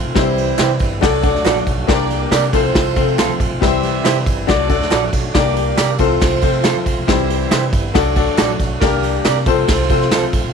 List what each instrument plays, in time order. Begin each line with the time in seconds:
Already playing: tonewheel organ F3 A3 C4 F4
0.04 upright bass B1
0.14 upright bass C2, tonewheel organ E3 G3 E4, grand piano G3 C4 E4 G4 C5, saxophone section E4 G4 C5, kick, snare, ride, tambourine
0.37 ride, muted conga
0.58 upright bass C3, clean electric guitar E4 G4 C5, snare, clap, ride, tambourine, high conga
0.80 upright bass G1, kick, ride, tambourine
1.01 upright bass C2, tonewheel organ F#3 A3 D4 F#4, grand piano A3 D4 F#4 A4 D5, saxophone section F#4 A4 D5, kick, snare, ride, muted conga
1.22 grand piano A3 D4 F#4 A4 D5, kick, ride, tambourine, muted conga
1.34 upright bass D2, snare, ride
1.44 upright bass A#1, clean electric guitar F#4 A4 D5, snare, clap, ride, tambourine, high conga
1.56 ride, high conga
1.67 upright bass B1, kick, ride, tambourine
1.87 upright bass C2, tonewheel organ G3 A#3 G4, grand piano A#3 D4 G4 A#4 C5, saxophone section G4 A#4 D5, kick, snare, ride, tambourine
1.94 grand piano D5
2.10 ride, tambourine, muted conga
2.31 upright bass C3, clean electric guitar G4 A#4 D5, snare, clap, ride, tambourine, high conga
2.53 upright bass C2, tonewheel organ F3 A3 C4 F4, grand piano A3 C4 F4 A4 C5, saxophone section F4 A4 C5, kick, ride, tambourine
2.75 upright bass C2, kick, snare, ride, muted conga
2.96 upright bass C3, grand piano A3 C4 F4 A4 C5, kick, ride, tambourine, muted conga
3.07 ride
3.18 upright bass C2, clean electric guitar F4 A4 C5, snare, clap, ride, tambourine, high conga
3.29 ride, high conga
3.40 upright bass A#1, kick, ride, tambourine
3.50 upright bass B1
3.61 upright bass C2, tonewheel organ E3 G3 E4, grand piano G3 C4 E4 G4 B4, saxophone section G4 C5 E5, kick, snare, ride, tambourine
3.67 grand piano C5
3.83 ride, tambourine, muted conga
4.04 upright bass C3, clean electric guitar E4 G4 C5, snare, clap, ride, tambourine, high conga
4.26 upright bass G1, kick, ride, tambourine
4.47 upright bass C2, tonewheel organ F#3 A3 D4 F#4, grand piano A3 D4 F#4 A4 D5, saxophone section F#4 A4 D5, kick, snare, ride, tambourine, muted conga
4.69 grand piano A3 D4 F#4 A4 D5, kick, ride, tambourine, muted conga
4.80 upright bass D2, snare, ride
4.91 upright bass A#1, clean electric guitar F#4 A4 D5, snare, clap, ride, tambourine, high conga
5.03 ride, high conga
5.13 upright bass B1, kick, ride, tambourine
5.34 upright bass C2, tonewheel organ G3 A#3 G4, grand piano A#3 D4 G4 A#4 D5, saxophone section G4 A#4 D5, kick, snare, ride, tambourine
5.56 ride, muted conga
5.77 upright bass C3, clean electric guitar G4 A#4 D5, snare, clap, ride, tambourine, high conga
5.98 upright bass C2, tonewheel organ F3 A3 C4 F4, grand piano A3 C4 F4 A4 C5, saxophone section F4 A4 C5, kick, ride, tambourine
6.21 upright bass C2, kick, snare, ride, tambourine, muted conga
6.42 upright bass C3, grand piano A3 C4 F4 A4 C5, kick, ride, tambourine, muted conga
6.53 ride
6.64 clean electric guitar F4 A4 C5, snare, clap, ride, tambourine, high conga
6.76 ride, high conga
6.86 upright bass C2, kick, ride, tambourine
6.98 upright bass C2
7.07 upright bass C2, tonewheel organ E3 G3 E4, grand piano G3 C4 E4 G4 C5, saxophone section E4 G4 C5, kick, snare, ride, tambourine
7.30 ride, tambourine, muted conga
7.51 upright bass C3, clean electric guitar E4 G4 C5, snare, clap, ride, tambourine, high conga
7.73 upright bass G1, kick, ride, tambourine
7.94 upright bass C2, tonewheel organ F#3 A3 D4 F#4, grand piano A3 D4 F#4 A4 D5, saxophone section F#4 A4 D5, kick, snare, ride, tambourine, muted conga
8.15 grand piano A3 D4 F#4 A4 D5, kick, ride, tambourine, muted conga
8.27 upright bass D2, ride
8.38 upright bass A#1, clean electric guitar F#4 A4 D5, snare, clap, ride, tambourine, high conga
8.49 ride, high conga
8.59 upright bass B1, kick, ride, tambourine
8.81 upright bass C2, tonewheel organ G3 A#3 G4, grand piano A#3 D4 G4 A#4 D5, saxophone section D4 G4 A#4, kick, snare, ride, tambourine
9.03 ride, tambourine, muted conga
9.25 upright bass C3, clean electric guitar G4 A#4 D5, snare, clap, ride, tambourine, high conga
9.46 upright bass C2, tonewheel organ F3 A3 C4 F4, grand piano A3 C4 F4 A4 C5, saxophone section F4 A4 C5, kick, ride, tambourine
9.68 upright bass C2, kick, snare, ride, tambourine, muted conga
9.90 upright bass C3, grand piano A3 C4 F4 A4 C5, kick, ride, tambourine, muted conga
10.01 snare, ride
10.11 upright bass C2, clean electric guitar F4 A4 C5, snare, clap, ride, tambourine, high conga
10.22 ride, high conga
10.33 upright bass A#1, kick, ride, tambourine
10.44 upright bass B1